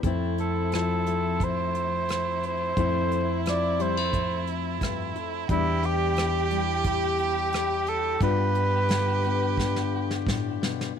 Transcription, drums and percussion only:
0.03 kick medium
0.03 closed hi-hat medium
0.38 closed hi-hat soft
0.72 cross-stick medium
0.72 closed hi-hat medium
1.06 closed hi-hat soft
1.40 kick medium
1.40 closed hi-hat medium
1.75 closed hi-hat soft
2.09 cross-stick medium
2.09 closed hi-hat medium
2.43 closed hi-hat soft
2.77 kick medium
2.77 closed hi-hat medium
3.11 closed hi-hat soft
3.46 cross-stick medium
3.46 closed hi-hat medium
3.80 closed hi-hat soft
4.13 kick medium
4.13 closed hi-hat medium
4.47 closed hi-hat soft
4.81 kick medium
4.81 cross-stick medium
4.81 closed hi-hat medium
5.16 closed hi-hat soft
5.49 kick medium
5.49 closed hi-hat medium
5.83 closed hi-hat soft
6.16 cross-stick medium
6.16 closed hi-hat medium
6.51 closed hi-hat soft
6.84 kick medium
6.84 closed hi-hat medium
7.18 closed hi-hat soft
7.53 cross-stick medium
7.53 closed hi-hat medium
7.87 closed hi-hat soft
8.21 kick medium
8.21 closed hi-hat medium
8.55 closed hi-hat soft
8.89 snare medium
8.89 closed hi-hat medium
9.24 closed hi-hat soft
9.57 kick medium
9.57 snare soft
9.76 snare soft
10.11 snare soft
10.27 kick medium
10.27 snare medium
10.63 snare medium
10.81 snare medium

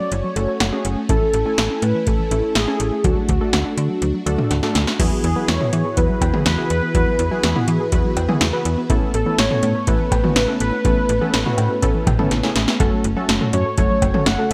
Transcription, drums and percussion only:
0.12 closed hi-hat medium
0.36 closed hi-hat medium
0.60 snare loud
0.60 closed hi-hat medium
0.85 closed hi-hat medium
1.09 kick loud
1.09 closed hi-hat medium
1.34 closed hi-hat medium
1.58 snare loud
1.58 closed hi-hat medium
1.82 closed hi-hat medium
2.07 kick loud
2.07 closed hi-hat medium
2.31 closed hi-hat medium
2.55 snare loud
2.55 closed hi-hat medium
2.80 closed hi-hat medium
3.04 kick loud
3.04 closed hi-hat medium
3.29 kick loud
3.29 closed hi-hat medium
3.53 snare loud
3.53 closed hi-hat medium
3.78 closed hi-hat medium
4.02 closed hi-hat medium
4.27 closed hi-hat medium
4.38 mid tom medium
4.51 snare medium
4.51 closed hi-hat medium
4.63 snare medium
4.75 snare medium
4.75 closed hi-hat medium
4.87 snare medium
5.00 kick loud
5.00 closed hi-hat medium
5.00 crash loud
5.24 closed hi-hat medium
5.48 snare loud
5.48 closed hi-hat medium
5.61 mid tom medium
5.73 closed hi-hat medium
5.97 kick loud
5.97 closed hi-hat medium
6.21 kick medium
6.21 closed hi-hat medium
6.21 cowbell medium
6.34 mid tom medium
6.46 snare loud
6.46 closed hi-hat medium
6.70 closed hi-hat medium
6.95 kick loud
6.95 closed hi-hat medium
7.19 closed hi-hat medium
7.43 snare loud
7.43 closed hi-hat medium
7.56 mid tom medium
7.68 closed hi-hat medium
7.92 kick loud
7.92 closed hi-hat medium
8.17 closed hi-hat medium
8.17 cowbell medium
8.29 mid tom medium
8.41 snare loud
8.41 closed hi-hat medium
8.65 closed hi-hat medium
8.90 kick loud
8.90 closed hi-hat medium
9.14 closed hi-hat medium
9.38 snare loud
9.38 closed hi-hat medium
9.51 mid tom medium
9.63 closed hi-hat medium
9.87 kick loud
9.87 closed hi-hat medium
10.12 kick medium
10.12 closed hi-hat medium
10.12 cowbell medium
10.24 mid tom medium
10.36 snare loud
10.36 closed hi-hat medium
10.60 closed hi-hat medium
10.85 kick loud
10.85 closed hi-hat medium
11.09 closed hi-hat medium
11.34 snare loud
11.34 closed hi-hat medium
11.46 mid tom medium
11.58 closed hi-hat medium
11.58 cowbell medium
11.82 kick loud
11.82 closed hi-hat medium
12.07 kick medium
12.07 closed hi-hat medium
12.07 mid tom medium
12.07 cowbell medium
12.19 mid tom medium
12.31 snare medium
12.31 closed hi-hat medium
12.43 snare medium
12.56 snare loud
12.56 closed hi-hat medium
12.68 snare medium
12.80 kick loud
12.80 closed hi-hat medium
13.04 closed hi-hat medium
13.29 snare loud
13.29 closed hi-hat medium
13.41 mid tom medium
13.53 closed hi-hat medium
13.78 kick loud
13.78 closed hi-hat medium
14.02 kick medium
14.02 closed hi-hat medium
14.02 cowbell medium
14.14 mid tom medium
14.26 snare loud
14.26 closed hi-hat medium

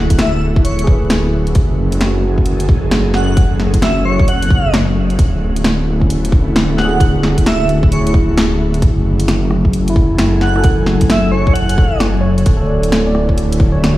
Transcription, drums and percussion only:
0.10 kick medium
0.10 closed hi-hat medium
0.19 snare loud
0.19 closed hi-hat medium
0.56 kick loud
0.65 closed hi-hat soft
0.79 closed hi-hat medium
0.87 kick loud
1.10 snare loud
1.10 closed hi-hat medium
1.47 closed hi-hat soft
1.55 kick loud
1.55 closed hi-hat soft
1.92 closed hi-hat medium
2.01 snare loud
2.01 closed hi-hat medium
2.38 kick medium
2.46 closed hi-hat medium
2.60 closed hi-hat medium
2.69 kick loud
2.91 snare loud
2.91 closed hi-hat soft
3.14 snare medium
3.37 kick loud
3.37 closed hi-hat medium
3.60 snare medium
3.74 kick medium
3.74 closed hi-hat medium
3.82 snare medium
3.82 closed hi-hat soft
4.19 kick loud
4.28 closed hi-hat medium
4.42 closed hi-hat medium
4.50 kick loud
4.74 snare medium
4.74 closed hi-hat soft
5.10 closed hi-hat soft
5.19 kick loud
5.19 closed hi-hat medium
5.56 closed hi-hat medium
5.64 snare loud
5.64 closed hi-hat medium
6.01 kick medium
6.10 closed hi-hat medium
6.25 closed hi-hat medium
6.32 kick loud
6.56 snare medium
6.56 closed hi-hat medium
6.78 snare medium
7.00 kick loud
7.00 closed hi-hat medium
7.23 snare medium
7.38 kick medium
7.38 closed hi-hat medium
7.46 snare medium
7.46 closed hi-hat medium
7.69 closed hi-hat soft
7.83 kick medium
7.92 closed hi-hat medium
8.07 closed hi-hat medium
8.14 kick loud
8.38 snare medium
8.38 closed hi-hat medium
8.74 closed hi-hat soft
8.82 kick loud
8.82 closed hi-hat medium
9.20 closed hi-hat medium
9.28 snare loud
9.28 closed hi-hat medium
9.51 cross-stick medium
9.65 kick medium
9.73 closed hi-hat medium
9.88 closed hi-hat medium
9.96 kick loud
10.19 snare loud
10.19 closed hi-hat medium
10.41 snare medium
10.56 cross-stick soft
10.64 kick loud
10.64 closed hi-hat medium
10.86 snare medium
11.01 kick medium
11.01 closed hi-hat medium
11.10 snare loud
11.10 closed hi-hat medium
11.47 kick loud
11.55 closed hi-hat medium
11.69 closed hi-hat medium
11.78 kick loud
12.00 cross-stick medium
12.00 snare loud
12.00 closed hi-hat medium
12.38 closed hi-hat soft
12.46 kick loud
12.46 closed hi-hat medium
12.83 closed hi-hat medium
12.92 snare loud
12.92 closed hi-hat medium
13.15 cross-stick soft
13.29 kick medium
13.38 closed hi-hat medium
13.52 closed hi-hat medium
13.60 kick loud
13.84 snare loud
13.84 closed hi-hat medium

